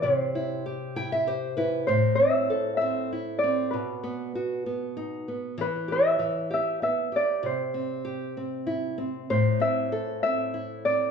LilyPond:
<<
  \new Staff \with { instrumentName = "Harp" } { \time 3/4 \key c \lydian \tempo 4 = 97 c''4. r4. | c''8 e''4 e''4 d''8 | b'4. r4. | b'8 e''4 e''8 e''8 d''8 |
c''4. r4. | c''8 e''4 e''4 d''8 | }
  \new Staff \with { instrumentName = "Nylon-string guitar" } { \time 3/4 \key c \lydian << { r4. g''16 e''16 c''8 b'8 | r2. | r2. | r2. |
r2. | r2. | } \\ { c8 e'8 g'8 e'8 g'8 e'8 | a,8 c'8 a'8 c'8 e'8 c'8 | b,8 b8 fis'8 b8 dis'8 b8 | e8 g'8 e8 g'8 b8 g'8 |
c8 c'8 g'8 c'8 e'8 c'8 | a,8 c'8 a'8 c'8 e'8 c'8 | } >> }
>>